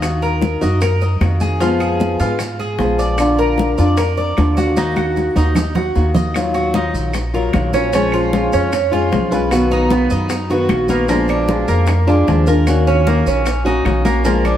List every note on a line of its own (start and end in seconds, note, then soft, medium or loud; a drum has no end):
0.00 0.56 D#2 medium
0.00 0.61 D#3 medium
0.00 0.61 A#3 medium
0.00 0.61 D#4 medium
0.00 0.60 F#4 medium
0.00 0.21 D#5 medium
0.00 high bongo medium
0.00 high conga soft
0.00 claves medium
0.00 maracas medium
0.22 0.61 A#4 medium
0.22 high bongo soft
0.22 high conga soft
0.22 maracas soft
0.42 high bongo medium
0.42 high conga medium
0.42 maracas soft
0.61 1.17 F#2 medium
0.61 0.80 A#3 soft
0.61 0.81 D#4 medium
0.61 0.81 F#4 medium
0.61 0.81 D#5 medium
0.61 high conga soft
0.61 maracas medium
0.81 1.01 A#4 medium
0.81 muted nylon-string guitar stroke medium
0.81 high bongo medium
0.81 high conga soft
0.81 claves medium
0.81 maracas medium
1.01 1.40 D#5 medium
1.01 high bongo soft
1.01 high conga soft
1.01 maracas soft
1.20 2.14 F2 medium
1.20 1.60 D#3 soft
1.20 1.60 A#3 soft
1.20 1.61 D#4 medium
1.20 1.61 F#4 soft
1.20 high bongo medium
1.20 low bongo medium
1.20 high conga medium
1.20 claves medium
1.20 maracas soft
1.40 1.60 G#4 medium
1.40 high bongo soft
1.40 high conga medium
1.40 maracas medium
1.60 2.24 F3 medium
1.60 2.19 G#3 medium
1.60 2.20 B3 medium
1.60 1.80 F4 medium
1.60 2.20 F4 medium
1.60 high bongo medium
1.60 high conga soft
1.60 maracas medium
1.80 2.19 G#4 medium
1.80 high conga soft
1.80 claves medium
1.80 maracas soft
2.00 high bongo soft
2.00 high conga medium
2.00 maracas soft
2.19 2.75 G#2 medium
2.19 2.39 G#3 medium
2.19 2.39 B3 soft
2.19 2.58 F4 medium
2.19 2.39 F4 medium
2.19 high bongo soft
2.19 high conga soft
2.19 maracas medium
2.39 muted nylon-string guitar stroke medium
2.39 high bongo medium
2.39 high conga soft
2.39 claves soft
2.39 maracas medium
2.60 2.98 G#4 medium
2.60 high bongo soft
2.60 high conga soft
2.60 maracas soft
2.78 3.72 A#1 medium
2.78 3.18 F3 medium
2.78 3.18 G#3 medium
2.78 3.18 B3 medium
2.78 3.18 F4 medium
2.78 high bongo medium
2.78 low bongo medium
2.78 high conga medium
2.78 maracas soft
2.98 3.37 D5 medium
2.98 high bongo soft
2.98 high conga soft
2.98 maracas medium
3.18 3.77 D3 medium
3.18 3.79 A#3 medium
3.18 3.78 D4 medium
3.18 3.77 F4 medium
3.18 high bongo medium
3.18 high conga soft
3.18 claves medium
3.18 maracas medium
3.38 3.77 A#4 medium
3.38 high bongo soft
3.38 high conga soft
3.38 maracas soft
3.58 high bongo medium
3.58 high conga medium
3.58 maracas soft
3.78 4.33 F2 medium
3.78 3.97 A#3 soft
3.78 3.98 D4 medium
3.78 3.97 F4 medium
3.78 3.97 D5 medium
3.78 high conga soft
3.78 maracas medium
3.97 4.17 A#4 medium
3.97 muted nylon-string guitar stroke medium
3.97 high bongo medium
3.97 high conga soft
3.97 claves medium
3.97 maracas medium
4.17 4.56 D5 medium
4.17 high bongo soft
4.17 high conga soft
4.17 maracas soft
4.37 5.30 D#2 medium
4.37 4.76 D3 medium
4.37 4.76 A#3 soft
4.37 4.77 D4 medium
4.37 4.77 F4 medium
4.37 high bongo medium
4.37 low bongo medium
4.37 high conga medium
4.37 claves soft
4.37 maracas soft
4.57 4.76 F#4 medium
4.57 high bongo soft
4.57 high conga medium
4.57 maracas medium
4.76 5.35 D#3 medium
4.76 5.35 A#3 medium
4.76 4.96 D#4 medium
4.76 5.36 D#4 medium
4.76 5.34 F#4 medium
4.76 high bongo medium
4.76 high conga medium
4.76 maracas medium
4.96 5.35 F#4 medium
4.96 high conga medium
4.96 claves medium
4.96 maracas soft
5.16 high bongo soft
5.16 high conga medium
5.16 maracas soft
5.36 5.91 D#2 medium
5.36 5.55 A#3 medium
5.36 5.75 D#4 medium
5.36 5.55 D#4 medium
5.36 5.55 F#4 medium
5.36 high bongo soft
5.36 high conga medium
5.36 maracas medium
5.55 muted nylon-string guitar stroke soft
5.55 high bongo medium
5.55 low conga medium
5.55 claves soft
5.55 maracas medium
5.75 6.14 F#4 medium
5.75 high bongo medium
5.75 low conga medium
5.75 maracas soft
5.95 6.88 D#2 medium
5.95 6.33 D#3 soft
5.95 6.34 A#3 medium
5.95 6.34 D#4 medium
5.95 6.35 F#4 medium
5.95 low bongo medium
5.95 maracas soft
6.15 6.34 D#5 medium
6.15 low bongo medium
6.15 low conga loud
6.15 maracas medium
6.34 6.73 D#3 medium
6.34 6.74 F#3 medium
6.34 6.74 A#3 medium
6.34 6.74 F4 medium
6.34 high bongo medium
6.34 high conga soft
6.34 claves medium
6.34 maracas medium
6.54 6.74 F#4 medium
6.54 high bongo soft
6.54 high conga soft
6.54 maracas soft
6.74 7.13 D#3 soft
6.74 7.13 F#3 soft
6.74 7.13 A#3 soft
6.74 6.94 D#4 medium
6.74 7.14 F4 medium
6.74 high bongo medium
6.74 high conga medium
6.74 maracas soft
6.94 7.49 A#1 medium
6.94 high conga soft
6.94 maracas medium
7.13 muted nylon-string guitar stroke medium
7.13 high bongo medium
7.13 high conga soft
7.13 claves medium
7.13 maracas medium
7.34 7.53 F#3 medium
7.34 7.53 A#3 medium
7.34 7.53 F4 medium
7.34 7.72 A#4 medium
7.34 high bongo soft
7.34 high conga soft
7.34 maracas soft
7.53 8.46 A#1 medium
7.53 7.72 D#3 soft
7.53 7.73 F#3 soft
7.53 7.73 A#3 medium
7.53 7.72 F4 soft
7.53 high bongo medium
7.53 low bongo medium
7.53 high conga medium
7.53 claves medium
7.53 maracas soft
7.73 7.93 F#3 soft
7.73 7.93 A#3 medium
7.73 7.93 C#4 medium
7.73 7.92 F4 medium
7.73 high bongo soft
7.73 high conga medium
7.73 maracas medium
7.93 8.31 F3 medium
7.93 8.32 G#3 medium
7.93 8.32 C#4 medium
7.93 8.13 C#4 medium
7.93 8.33 F4 medium
7.93 high bongo medium
7.93 high conga soft
7.93 maracas medium
8.12 8.52 F4 medium
8.12 high conga soft
8.12 claves medium
8.12 maracas soft
8.33 8.71 F3 soft
8.33 8.72 G#3 soft
8.33 8.72 C#4 soft
8.33 8.72 F4 soft
8.33 high bongo medium
8.33 high conga medium
8.33 maracas soft
8.53 9.08 F2 medium
8.53 8.91 C#4 medium
8.53 high bongo soft
8.53 high conga soft
8.53 maracas medium
8.72 muted nylon-string guitar stroke medium
8.72 high bongo medium
8.72 high conga soft
8.72 claves medium
8.72 maracas medium
8.91 9.10 G#3 medium
8.91 9.10 C#4 medium
8.91 9.11 F4 medium
8.91 9.31 F4 medium
8.91 high bongo soft
8.91 high conga soft
8.91 maracas soft
9.11 10.05 B1 medium
9.11 9.30 F3 medium
9.11 9.30 G#3 medium
9.11 9.31 C#4 medium
9.11 9.30 F4 medium
9.11 high bongo medium
9.11 low bongo medium
9.11 high conga medium
9.11 maracas soft
9.31 9.51 G#3 medium
9.31 9.51 C#4 medium
9.31 9.50 F4 medium
9.31 9.70 B4 medium
9.31 high bongo soft
9.31 high conga soft
9.31 maracas medium
9.51 9.90 B2 medium
9.51 9.89 D#3 medium
9.51 9.89 A#3 medium
9.51 9.90 B3 medium
9.51 9.90 F#4 medium
9.51 high bongo medium
9.51 high conga soft
9.51 claves medium
9.51 maracas medium
9.71 9.90 D#4 medium
9.71 high bongo soft
9.71 high conga soft
9.71 maracas soft
9.90 10.29 D#3 soft
9.90 10.29 A#3 medium
9.90 10.10 B3 medium
9.90 10.29 B3 medium
9.90 10.29 F#4 soft
9.90 high bongo medium
9.90 high conga medium
9.90 maracas soft
10.10 10.66 F#2 medium
10.10 10.49 D#4 medium
10.10 high conga soft
10.10 maracas medium
10.30 muted nylon-string guitar stroke medium
10.30 high bongo medium
10.30 high conga soft
10.30 claves medium
10.30 maracas medium
10.50 10.68 D#3 medium
10.50 10.69 A#3 medium
10.50 10.69 B3 medium
10.50 10.69 F#4 medium
10.50 10.89 F#4 medium
10.50 high bongo soft
10.50 high conga soft
10.50 maracas soft
10.68 11.62 A#1 medium
10.68 10.89 D#3 medium
10.68 10.89 A#3 medium
10.68 10.89 B3 medium
10.68 10.88 F#4 medium
10.68 high bongo medium
10.68 low bongo medium
10.68 high conga medium
10.68 claves medium
10.68 maracas soft
10.88 11.08 D#3 soft
10.88 11.08 A#3 medium
10.88 11.09 A#3 medium
10.88 11.09 B3 medium
10.88 11.08 F#4 medium
10.88 high bongo soft
10.88 high conga medium
10.88 maracas medium
11.08 11.47 F3 medium
11.08 11.48 G#3 medium
11.08 11.28 A#3 medium
11.08 11.48 D4 medium
11.08 11.48 F4 medium
11.08 high bongo medium
11.08 high conga soft
11.08 maracas medium
11.28 11.67 D4 medium
11.28 high conga soft
11.28 claves medium
11.28 maracas soft
11.48 11.87 F3 soft
11.48 11.87 G#3 soft
11.48 11.88 D4 soft
11.48 11.88 F4 medium
11.48 high bongo medium
11.48 high conga medium
11.48 maracas soft
11.68 12.24 F2 medium
11.68 12.07 A#3 medium
11.68 high bongo soft
11.68 high conga soft
11.68 maracas medium
11.86 muted nylon-string guitar stroke medium
11.86 high bongo medium
11.86 high conga soft
11.86 claves medium
11.86 maracas medium
12.07 12.27 G#3 medium
12.07 12.46 D4 medium
12.07 12.27 D4 medium
12.07 12.26 F4 medium
12.07 high bongo soft
12.07 high conga soft
12.07 maracas soft
12.27 13.20 D#2 medium
12.27 12.47 F3 medium
12.27 12.47 G#3 medium
12.27 12.46 D4 medium
12.27 12.46 F4 medium
12.27 high bongo medium
12.27 low bongo medium
12.27 high conga medium
12.27 maracas soft
12.47 12.67 G#3 soft
12.47 12.66 D4 medium
12.47 12.66 F4 medium
12.47 12.86 A#4 medium
12.47 high bongo soft
12.47 high conga soft
12.47 maracas medium
12.67 13.05 D#3 medium
12.67 13.06 A#3 medium
12.67 13.06 C#4 medium
12.67 13.07 F#4 medium
12.67 high bongo medium
12.67 high conga soft
12.67 claves medium
12.67 maracas medium
12.87 13.06 C#4 medium
12.87 high bongo soft
12.87 high conga soft
12.87 maracas soft
13.06 13.45 D#3 medium
13.06 13.45 A#3 soft
13.06 13.26 A#3 medium
13.06 13.45 C#4 medium
13.06 13.45 F#4 soft
13.06 high bongo medium
13.06 high conga medium
13.06 maracas soft
13.26 13.82 A#1 medium
13.26 13.65 C#4 medium
13.26 high conga soft
13.26 maracas medium
13.46 muted nylon-string guitar stroke medium
13.46 high bongo medium
13.46 high conga soft
13.46 claves medium
13.46 maracas medium
13.65 13.84 A#3 medium
13.65 13.85 C#4 medium
13.65 14.04 D#4 medium
13.65 13.84 F#4 medium
13.65 high bongo soft
13.65 high conga soft
13.65 maracas soft
13.85 14.57 A#1 medium
13.85 14.04 D#3 medium
13.85 14.05 A#3 medium
13.85 14.04 C#4 medium
13.85 14.04 F#4 medium
13.85 high bongo medium
13.85 low bongo medium
13.85 high conga medium
13.85 claves medium
13.85 maracas soft
14.05 14.24 A#3 medium
14.05 14.24 C#4 soft
14.05 14.24 F#4 medium
14.05 high bongo soft
14.05 high conga medium
14.05 maracas medium
14.24 14.57 F3 medium
14.24 14.57 G#3 medium
14.24 14.44 A#3 medium
14.24 14.57 D4 medium
14.24 14.57 F4 medium
14.24 high bongo medium
14.24 high conga soft
14.24 maracas medium
14.45 14.57 D4 medium
14.45 high conga soft
14.45 claves medium
14.45 maracas soft